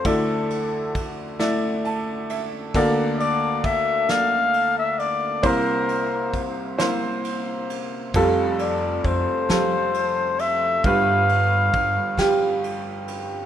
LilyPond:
<<
  \new Staff \with { instrumentName = "Flugelhorn" } { \time 6/8 \key f \major \tempo 4. = 44 a'4 r2 | r8 d''8 e''8 f''8. e''16 d''8 | bes'4 r2 | r8 d''8 c''4. e''8 |
f''2 r4 | }
  \new Staff \with { instrumentName = "Upright piano" } { \time 6/8 \key f \major << { r2 a''8 e''8 | r2. | r2. | r2. |
r2. | } \\ { <a e' d''>4 r8 <a e' d''>4 r8 | <bes a' d''>4 r8 <bes a' d''>4 r8 | <bes e' c''>4 r8 <bes e' c''>4 r8 | <g f' a'>4 r8 <g f' a'>4 r8 |
<g f' b'>4 r8 <g f' g'>4 r8 | } >> }
  \new Staff \with { instrumentName = "Upright piano" } { \clef bass \time 6/8 \key f \major <d, d>2. | <d, d>2. | <c, c>2. | <f,, f,>2. |
<g,, g,>2. | }
  \new Staff \with { instrumentName = "Upright bass" } { \clef bass \time 6/8 \key f \major r2. | r2. | r2. | f,4 f,16 r16 f4. |
g,4 g,16 r16 g4. | }
  \new DrumStaff \with { instrumentName = "Drums" } \drummode { \time 6/8 <bd cymr>8 cymr8 <bd cymr>8 <cymr sn>8 cymr8 cymr8 | <bd cymr>8 cymr8 <bd cymr>8 <cymr sn>8 cymr8 cymr8 | <bd cymr>8 cymr8 <bd cymr>8 <cymr sn>8 cymr8 cymr8 | <bd cymr>8 cymr8 <bd cymr>8 <cymr sn>8 cymr8 cymr8 |
<bd cymr>8 cymr8 <bd cymr>8 <cymr sn>8 cymr8 cymr8 | }
>>